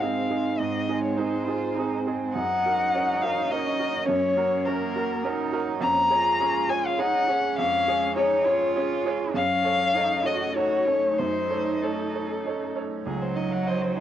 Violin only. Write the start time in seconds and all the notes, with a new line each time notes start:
0.00 F5
0.59 D#5
1.04 C#5
1.18 C5
2.34 F#5
3.22 F5
3.51 D#5
4.09 C#5
4.66 A#4
5.82 A#5
6.70 G#5
6.86 F5
7.00 F#5
7.58 F5
8.16 C#5
9.36 F5
10.26 D#5
10.56 C#5
11.18 C5
11.82 A4
13.06 G#4
13.22 C5
13.36 D#5
13.52 F#5
13.67 D#5
13.81 C5
13.96 G#4